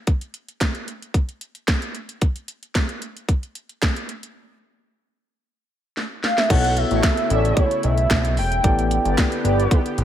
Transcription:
0.07 kick, closed hi-hat
0.21 closed hi-hat
0.34 closed hi-hat
0.48 closed hi-hat
0.61 kick, snare, clap, closed hi-hat
0.75 closed hi-hat
0.88 closed hi-hat
1.02 closed hi-hat
1.14 kick, closed hi-hat
1.29 closed hi-hat
1.41 closed hi-hat
1.55 closed hi-hat
1.68 kick, snare, clap, closed hi-hat
1.82 closed hi-hat
1.95 closed hi-hat
2.09 closed hi-hat
2.21 kick, closed hi-hat
2.36 closed hi-hat
2.48 closed hi-hat
2.63 closed hi-hat
2.75 kick, snare, clap, closed hi-hat
2.89 closed hi-hat
3.02 closed hi-hat
3.17 closed hi-hat
3.29 kick, closed hi-hat
3.43 closed hi-hat
3.55 closed hi-hat
3.69 closed hi-hat
3.82 kick, snare, clap, closed hi-hat
3.96 closed hi-hat
4.09 closed hi-hat
4.23 closed hi-hat
5.97 snare
6.24 F5, snare
6.37 E5, snare
6.49 B1 C#3 A3 B3 E4 F#4 A4 C#5 F#5, kick, closed hi-hat, crash
6.64 closed hi-hat
6.77 E5, closed hi-hat
6.90 A1 A3 F#4 C#5, closed hi-hat
7.03 kick, snare, clap, closed hi-hat
7.17 closed hi-hat
7.30 A1 C#4 A4 D5 E5, closed hi-hat
7.45 closed hi-hat
7.57 C#5, kick, closed hi-hat
7.71 closed hi-hat
7.83 B1 E5, closed hi-hat
7.98 closed hi-hat
8.10 B1, kick, snare, clap, closed hi-hat
8.25 closed hi-hat
8.37 E1 G5, open hi-hat
8.52 closed hi-hat
8.63 A1 D3 B3 E4 G4 A4 D5, kick, closed hi-hat
8.79 closed hi-hat
8.91 closed hi-hat
9.05 G1 B3 G4 D5, closed hi-hat
9.18 kick, snare, clap, closed hi-hat
9.32 closed hi-hat
9.44 G1 B3 G4 D5, closed hi-hat
9.60 closed hi-hat
9.71 kick, closed hi-hat
9.86 closed hi-hat
9.98 A1, closed hi-hat

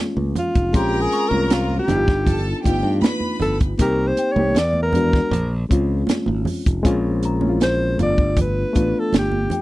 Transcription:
Already playing: G#3 A#3 C#4 F4
0.17 C#2, high conga
0.35 F4, closed hi-hat, muted conga, low conga
0.55 F1, kick, closed hi-hat
0.73 A#1 G#3 C4 C#4 F4 G4 A#4 A#5 C6, kick, closed hi-hat, muted conga
1.01 G#4
1.12 C#6, closed hi-hat, muted conga
1.29 C2 G#3 C4 C#4 A#4, high conga
1.34 F4
1.50 F4, snare, closed hi-hat, muted conga
1.70 high conga
1.79 G4
1.88 G1 B3 D4 D#4 E4, closed hi-hat, muted conga, low conga
1.98 F4
2.08 kick, snare
2.26 A4 A5, kick, closed hi-hat, muted conga, low conga
2.64 G1 A3 D4 D#4 F4 G4 G5, kick, closed hi-hat, muted conga
2.70 B3
2.83 G2
3.02 B4 B5, snare, closed hi-hat, muted conga, high conga
3.20 high conga
3.40 G1 A4, closed hi-hat, low conga
3.60 kick, closed hi-hat
3.78 C2 A#3 C4 D#4 A#4, kick, closed hi-hat, muted conga
3.82 G4
4.07 C5
4.17 G5, closed hi-hat, muted conga
4.32 C2 A#3 C#5, high conga
4.37 C4 D#4 G4
4.54 E2 D5, snare, closed hi-hat, muted conga
4.73 high conga
4.83 A#4
4.93 G#3 B3 D4 F#4, closed hi-hat, low conga
5.13 kick, snare
5.31 A#1, closed hi-hat, low conga
5.69 C#2 G#3 C4 C#4 F4, kick, closed hi-hat
6.07 muted fingered electric bass stroke, snare, closed hi-hat, high conga
6.26 G#1, high conga
6.45 open hi-hat, muted conga, low conga
6.66 F1, kick, closed hi-hat
6.83 A#1 G#3 C4 C#4 F4, kick, closed hi-hat
7.23 A#5, closed hi-hat, muted conga
7.39 G#3 C4 C#4 E4, high conga
7.49 F4
7.60 C5, snare, closed hi-hat, muted conga
7.97 G1 A3 B3 D4 F4, closed hi-hat, muted conga, low conga
8.03 D5
8.18 kick
8.37 kick, closed hi-hat, low conga
8.42 B4
8.73 A1 A3 B3 D4 F4, kick, closed hi-hat, muted conga
9.00 A4
9.13 G1, snare, closed hi-hat, muted conga, high conga
9.18 G4
9.32 high conga
9.50 G5, closed hi-hat, muted conga, low conga

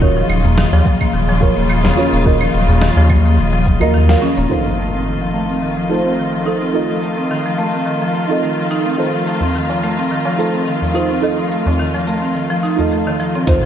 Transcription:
Already playing: D#1 D#5
0.00 C#3 D#3 F4 F#4 A#4 C#5, kick, cabasa
0.17 F3
0.29 D#1 F#3, cabasa, claves
0.45 A#3, tabla tin, tabla ge, cabasa
0.58 D#3, snare, cabasa
0.73 D#2 F3, tabla na
0.86 F#3, kick, cabasa
1.01 A#3, kick, cabasa, claves
1.13 D#1 D#3, cabasa
1.29 F3, tabla na
1.41 F#3 F4 F#4 A#4 C#5, kick, cabasa
1.57 D#1 A#3, cabasa
1.70 D#3, cabasa, claves
1.84 F3, snare, tabla tin, tabla ge
1.97 C#4 F4 F#4 A#4 C#5, cabasa
2.13 D#1 A#3, cabasa
2.25 D#3 F4 F#4 A#4 D#5, kick, cabasa
2.41 F3, cabasa, claves
2.54 D#1 F#3, cabasa
2.68 A#3, tabla na, tabla tin, tabla ge, cabasa
2.81 D#3, snare, cabasa
2.97 D#2 F3, tabla na, cabasa
3.10 F#3, kick, cabasa, claves
3.25 A#3, cabasa
3.38 D#1 D#3, cabasa
3.53 F3, cabasa
3.66 F#3, kick, cabasa
3.80 D#2 A#3 F4 F#4 A#4 D#5, tabla ge, cabasa, claves
3.94 D#3, cabasa
4.08 F3 F4 F#4 A#4 F5, snare, tabla tin, cabasa
4.22 C#4, cabasa
4.37 D#1 A#3, tabla tin, cabasa
4.49 D#3 A3 D#4 F4 A4 C5 D#5, impact, cabasa
4.65 F3
4.78 A3, cabasa
4.93 C4, cabasa
5.06 D#3, cabasa
5.21 F3
5.34 A3, cabasa
5.49 C4, cabasa
5.62 D#3, cabasa
5.77 F3
5.89 A3 D#4 F4 A4 C5, cabasa
6.06 C4, cabasa
6.18 D#3, cabasa
6.34 F3
6.46 D#4 F4 A4 C5, cabasa
6.62 C4, cabasa
6.73 D#3 D#4 F4 A4 D#5, cabasa
6.90 F3
7.03 A3, cabasa
7.18 C4, cabasa
7.31 D#3, cabasa
7.46 F3
7.58 A3, cabasa
7.74 C4, cabasa
7.86 D#3, cabasa
8.02 F3
8.14 A3, cabasa
8.28 C4 D#4 F4 A4 D#5, cabasa
8.43 D#3, cabasa
8.58 F3
8.71 D#4, cabasa
8.86 C4, cabasa
8.97 D#3 D#4 F4 A4 C5, cabasa
9.15 F3
9.27 A3, cabasa
9.41 C4, tabla ge, cabasa
9.55 D#3, cabasa
9.70 F3, tabla na
9.83 A3, cabasa
9.98 C4, cabasa
10.11 D#3, cabasa
10.25 F3, tabla na, tabla tin
10.38 A3 D#4 F4 A4 C5, cabasa
10.55 C4, cabasa
10.67 D#3, cabasa
10.82 F3, tabla tin, tabla ge
10.93 D#4 F4 A4 C5, cabasa
11.11 C4, cabasa
11.22 D#3 D#4 F4 A4 D#5, cabasa
11.39 F3
11.52 A3, cabasa
11.66 C4, tabla na, tabla tin, tabla ge, cabasa
11.80 D#3, cabasa
11.94 F3, tabla na, cabasa
12.07 A3, cabasa
12.22 C4, cabasa
12.35 D#3, cabasa
12.50 F3
12.63 D#4, cabasa
12.76 A3 D#4 F4 A4 D#5, tabla ge, cabasa
12.92 A3, cabasa
13.07 D#3, tabla tin
13.20 F3, cabasa
13.35 C4, tabla tin, cabasa
13.46 D#3 A3 D#4 F4 A4 C5, kick, closed hi-hat, impact, cabasa

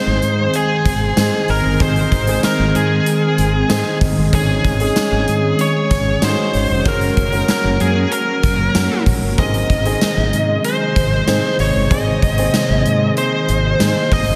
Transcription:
Already playing: D#3 G#3 C4 D#4 G#4 C5
0.07 G#1
0.22 G#2, closed hi-hat, tambourine
0.54 G#4, closed hi-hat, tambourine
0.85 G#1, kick, closed hi-hat, tambourine
1.16 G#2 C4 D#4 G#4, snare, closed hi-hat, tambourine
1.48 G#1 A#4, open hi-hat, tambourine
1.65 G1
1.80 G#1 C4 D#4 G#4 C5, kick, closed hi-hat, tambourine
1.96 closed hi-hat
2.12 G#1, kick, closed hi-hat, tambourine
2.27 C4 D#4 G#4, closed hi-hat
2.43 A#4, snare, closed hi-hat, tambourine
2.59 G#1
2.75 G#2 G#4, closed hi-hat, tambourine
3.06 closed hi-hat, tambourine
3.38 G#1, closed hi-hat, tambourine
3.69 G#2 C4 D#4 G#4, snare, closed hi-hat, tambourine
4.01 G#1, kick, open hi-hat, tambourine
4.17 G1
4.33 G#1 C#4 D#4 G#4, kick, closed hi-hat, tambourine
4.64 G#1, kick, closed hi-hat
4.80 C#4 D#4 G#4, closed hi-hat
4.96 snare, closed hi-hat, tambourine
5.12 G#1
5.28 G#2, closed hi-hat, tambourine
5.59 C#5, closed hi-hat, tambourine
5.90 G#1, kick, closed hi-hat, tambourine
6.22 G#2 C#4 D#4 F#4 C5, snare, closed hi-hat, tambourine
6.30 G#4
6.54 G#1, open hi-hat, tambourine
6.70 F1
6.85 F#1 F#3 A#3 C#4 F#4 A#4, kick, closed hi-hat, tambourine
7.01 closed hi-hat
7.17 F#1, kick, closed hi-hat
7.32 C#4 F#4 A#4, closed hi-hat
7.48 A#4, snare, closed hi-hat, tambourine
7.65 F#1
7.80 F#2 G#4, closed hi-hat, tambourine
8.12 A#4, closed hi-hat
8.43 F#1, kick, closed hi-hat, tambourine
8.75 F#2 C#4 F#4 A#4, snare, closed hi-hat, tambourine
9.06 A#1, kick, open hi-hat, tambourine
9.23 G1
9.38 G#1 C3 D#3 G#3 C4 D#4 G#4 D#5, kick, closed hi-hat, tambourine
9.54 closed hi-hat
9.70 G#1, kick, closed hi-hat, tambourine
9.85 C4 D#4 G#4, closed hi-hat
10.01 snare, closed hi-hat, tambourine
10.17 G#1
10.33 G#2, closed hi-hat, tambourine
10.64 C5, closed hi-hat
10.96 G#1, kick, closed hi-hat, tambourine
11.27 G#2 C4 D#4 G#4, snare, closed hi-hat, tambourine
11.59 G#1 C#5, open hi-hat, tambourine
11.75 G1
11.91 G#1 A#3 C4 D#4 G#4 D#5, kick, closed hi-hat, tambourine
12.22 G#1, kick, closed hi-hat
12.38 C4 D#4 G#4, closed hi-hat
12.54 snare, closed hi-hat, tambourine
12.70 G#1
12.85 G#2, closed hi-hat, tambourine
13.17 C5, closed hi-hat, tambourine
13.48 G#1, closed hi-hat, tambourine
13.80 G#2 C4 D#4 G#4, snare, closed hi-hat, tambourine
14.11 G#1 D#5, kick, open hi-hat, tambourine
14.28 G1

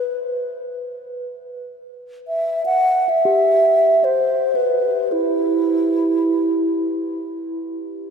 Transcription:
Already playing: B4
2.28 E5
2.66 F#5
3.09 E5
3.25 G4
4.04 C5
4.55 B4
5.12 E4

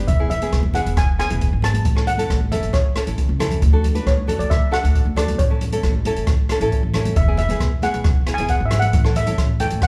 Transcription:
0.08 E1 E5, kick, closed hi-hat
0.19 B3 E4 G#4
0.30 E5, closed hi-hat, low conga
0.41 B3 E4 G#4, closed hi-hat, high conga
0.53 E1, kick, cross-stick, closed hi-hat
0.63 high conga
0.74 B3 E4 G#4 F#5, closed hi-hat, high conga, low conga
0.86 E1, closed hi-hat
0.97 G#5, kick, cross-stick, closed hi-hat
1.19 B3 E4 G#4 G#5, cross-stick, closed hi-hat
1.30 E1 B3 E4 G#4, closed hi-hat
1.41 kick, closed hi-hat
1.53 G#1
1.62 B3 E4 G#4 A5, cross-stick, closed hi-hat, low conga
1.74 closed hi-hat, high conga
1.85 A1, kick, closed hi-hat
1.95 C#4 E4 A4, cross-stick
2.07 F#5, closed hi-hat, low conga
2.17 C#4 E4 A4, closed hi-hat, high conga
2.30 A1, kick, cross-stick, closed hi-hat
2.40 high conga
2.52 C#4 E4 A4 E5, closed hi-hat, high conga, low conga
2.63 A1, closed hi-hat
2.73 C#5, kick, cross-stick, closed hi-hat, low conga
2.96 C#4 E4 A4, cross-stick, closed hi-hat
3.07 A1 C#4 E4 A4, closed hi-hat
3.18 kick, closed hi-hat, high conga
3.29 C#2, high conga
3.39 C#4 E4 A4, cross-stick, closed hi-hat, low conga
3.51 closed hi-hat, low conga
3.62 D2, kick, closed hi-hat
3.73 D4 F#4 A4
3.84 closed hi-hat, low conga
3.95 D4 F#4 B4, closed hi-hat, high conga
4.06 D2 C#5, kick, cross-stick, closed hi-hat
4.17 high conga
4.27 D4 F#4 A4, closed hi-hat, high conga, low conga
4.39 D2 D5, closed hi-hat
4.50 E5, kick, cross-stick, closed hi-hat
4.71 D4 F#4 A4 F#5, cross-stick, closed hi-hat
4.82 D2 D4 F#4 A4, closed hi-hat
4.95 kick, closed hi-hat
5.05 D2
5.16 D4 F#4 A4 D5, cross-stick, closed hi-hat, low conga
5.28 closed hi-hat, high conga
5.38 A1 C#5, kick, closed hi-hat
5.50 C#4 E4 A4
5.61 closed hi-hat, low conga
5.72 C#4 E4 A4, closed hi-hat, high conga
5.83 A1, kick, cross-stick, closed hi-hat
5.95 high conga
6.05 C#4 E4 A4, closed hi-hat, high conga
6.16 A1, closed hi-hat
6.27 kick, cross-stick, closed hi-hat
6.49 C#4 E4 A4, cross-stick, closed hi-hat
6.60 A1 C#4 E4 A4, closed hi-hat
6.72 kick, closed hi-hat
6.83 A1
6.94 C#4 E4 A4, cross-stick, closed hi-hat, low conga
7.05 closed hi-hat, high conga
7.16 E1 E5, kick, closed hi-hat
7.28 B3 E4 G#4
7.37 E5, closed hi-hat, low conga
7.49 B3 E4 G#4, closed hi-hat, high conga
7.60 E1, kick, cross-stick, closed hi-hat
7.82 B3 E4 G#4 F#5, closed hi-hat, high conga
7.94 E1, closed hi-hat
8.04 kick, cross-stick, closed hi-hat
8.27 B3 E4 G#4, cross-stick, closed hi-hat
8.34 G#5
8.38 E1 B3 E4 G#4, closed hi-hat
8.49 F#5, kick, closed hi-hat
8.60 G#1
8.66 E5
8.71 B3 E4 G#4, cross-stick, closed hi-hat, low conga
8.79 F#5, closed hi-hat, high conga
8.93 A1, kick, closed hi-hat
9.05 C#4 E4 A4, cross-stick
9.15 E5, closed hi-hat, low conga
9.26 C#4 E4 A4, closed hi-hat, high conga
9.38 A1, kick, cross-stick, closed hi-hat
9.60 C#4 E4 A4 G5, closed hi-hat, high conga, low conga
9.71 A1, closed hi-hat
9.82 F#5, kick, cross-stick, closed hi-hat

